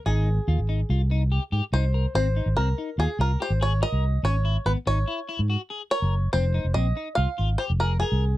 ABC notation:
X:1
M:5/4
L:1/16
Q:1/4=143
K:Ab
V:1 name="Five-string banjo"
A16 c4 | c4 B4 A2 B2 c2 d2 e4 | ^c4 =B2 c6 z4 c4 | c4 e4 f4 c2 B2 A4 |]
V:2 name="Clean electric guitar"
E4 F2 E2 F2 E2 G2 G2 E2 B2 | C2 E2 C2 E2 F2 F2 G2 A2 B4 | ^C2 =E2 =B,2 _E2 =E2 E2 _G2 ^G2 _B4 | C2 E2 C2 E2 F2 F2 G2 A2 B4 |]
V:3 name="Fretless electric bass" clef=bass
A,,,4 E,, A,,,3 C,,6 A,, z C,,4 | A,,,3 A,,, C,,2 z2 E,, z C,,2 z A,,,4 C,,3 | ^G,,,4 G,,, z G,,,2 z3 ^G,,2 z4 _G,,,3 | F,,,3 F,,, B,,,2 z2 C,, z A,,,2 z F,,,4 C,,3 |]